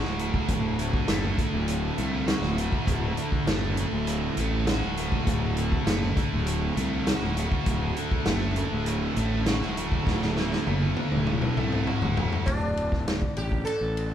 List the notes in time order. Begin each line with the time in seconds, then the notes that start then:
Already playing: D2 A2 D3 A3 F#4
0.04 D1, snare
0.19 A3, closed hi-hat
0.34 kick
0.48 D1 D2, kick, closed hi-hat
0.79 D3, closed hi-hat
0.93 kick
1.08 F#1 A3, snare, closed hi-hat
1.38 D3, kick, closed hi-hat
1.53 D1
1.68 A2, closed hi-hat
1.98 C2 A3, closed hi-hat
2.27 F#4, snare, closed hi-hat
2.42 D1, snare
2.57 A3, closed hi-hat
2.72 kick
2.87 D1 D2 A2, kick, closed hi-hat
3.17 D3, closed hi-hat
3.32 kick
3.47 F#1 A3, snare, closed hi-hat
3.77 D3, closed hi-hat
3.92 D1
4.07 A2, closed hi-hat
4.37 A1 A3, closed hi-hat
4.67 F#4, snare, closed hi-hat
4.83 D1
4.97 A3, closed hi-hat
5.12 kick
5.27 D1 D2, kick, closed hi-hat
5.57 D3, closed hi-hat
5.72 kick
5.87 F#1 A3, snare, closed hi-hat
6.16 D3, kick, closed hi-hat
6.33 D1
6.46 A2, closed hi-hat
6.77 C2 A3, closed hi-hat
7.07 F#4, snare, closed hi-hat
7.22 D1
7.37 A3, closed hi-hat
7.52 kick
7.66 D1 D2, kick, closed hi-hat
7.96 D3, closed hi-hat
8.11 kick
8.26 F#1 A3, snare, closed hi-hat
8.56 D3, closed hi-hat
8.72 D1
8.86 A2, closed hi-hat
9.16 A1 A3, closed hi-hat
9.46 F#4, snare, closed hi-hat
9.62 D1, snare
9.77 A3, closed hi-hat
9.92 kick
10.07 D1 D2, kick, snare
10.22 snare
10.36 D3, snare
10.52 snare
10.67 F#1 A3, high tom
10.82 high tom
10.97 D3, high tom
11.12 D1, mid tom
11.27 A2, mid tom
11.42 mid tom
11.57 C2 A3, mid tom
11.72 mid tom
11.87 F#4, mid tom
12.02 D1, floor tom
12.17 A3, floor tom
12.32 floor tom
12.46 D1 D4, kick, ride
12.77 ride
12.92 kick, snare
13.08 snare, ride
13.22 kick
13.37 A1 G4, ride
13.52 kick
13.65 A4, ride
13.81 A1
13.97 ride